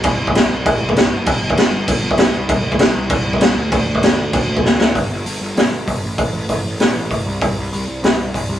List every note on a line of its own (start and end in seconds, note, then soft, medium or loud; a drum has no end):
0.03 0.19 C2 medium
0.03 kick loud
0.03 crash medium
0.20 0.34 C2 medium
0.27 kick medium
0.35 0.49 C2 loud
0.35 snare loud
0.35 crash medium
0.51 0.65 C2 medium
0.66 0.80 C2 medium
0.66 kick loud
0.66 crash medium
0.81 0.95 C2 medium
0.89 kick medium
0.96 1.11 C2 medium
0.96 snare loud
0.96 crash medium
1.12 1.26 F#1 medium
1.26 1.41 G1 loud
1.26 kick loud
1.26 crash medium
1.42 1.57 G1 medium
1.50 kick medium
1.57 1.72 G1 loud
1.57 snare loud
1.57 crash medium
1.73 1.87 G1 medium
1.88 2.02 G1 loud
1.88 kick loud
1.88 crash medium
2.03 2.18 G1 medium
2.11 kick medium
2.18 2.32 B1 medium
2.18 snare loud
2.18 crash medium
2.33 2.48 C2 loud
2.49 2.63 C2 medium
2.49 kick loud
2.49 crash medium
2.64 2.79 C2 medium
2.72 kick medium
2.79 2.94 C2 loud
2.79 snare loud
2.79 crash medium
2.95 3.09 C2 medium
3.10 3.25 C2 loud
3.10 kick loud
3.10 crash medium
3.25 3.40 C2 loud
3.33 kick medium
3.41 3.55 C2 loud
3.41 snare loud
3.41 crash medium
3.56 3.71 D2 loud
3.72 3.86 D2 loud
3.72 kick loud
3.72 crash medium
3.87 4.02 D2 medium
3.95 kick medium
4.02 4.17 D2 loud
4.02 snare loud
4.02 crash medium
4.18 4.32 D2 loud
4.33 4.48 D2 loud
4.33 kick loud
4.33 crash medium
4.49 4.63 D2 medium
4.57 kick loud
4.64 4.79 D2 loud
4.64 snare medium
4.80 4.94 D2 medium
4.80 snare loud
4.95 5.06 G1 medium
4.95 kick loud
4.95 open hi-hat medium
5.11 5.22 G1 medium
5.26 5.37 G1 medium
5.26 open hi-hat medium
5.41 5.52 G1 medium
5.57 5.68 G1 medium
5.57 snare loud
5.57 open hi-hat medium
5.72 5.83 G1 medium
5.87 5.99 G1 medium
5.87 kick medium
5.87 open hi-hat medium
6.03 6.14 A1 medium
6.18 6.29 A1 medium
6.18 kick loud
6.18 open hi-hat medium
6.33 6.45 A1 medium
6.49 6.60 A1 loud
6.49 kick medium
6.49 open hi-hat medium
6.65 6.76 A1 medium
6.79 6.91 A1 medium
6.79 snare loud
6.79 open hi-hat medium
6.95 7.07 A1 medium
7.11 7.22 A1 medium
7.11 kick medium
7.11 open hi-hat medium
7.26 7.38 C2 medium
7.41 7.53 C2 medium
7.41 kick loud
7.41 open hi-hat medium
7.57 7.68 C2 medium
7.72 7.84 C2 loud
7.72 open hi-hat medium
7.88 7.99 C2 medium
8.03 8.15 C2 medium
8.03 snare loud
8.03 open hi-hat medium
8.18 8.30 C2 medium
8.34 8.46 C2 medium
8.34 kick medium
8.34 open hi-hat medium
8.49 8.59 C2 medium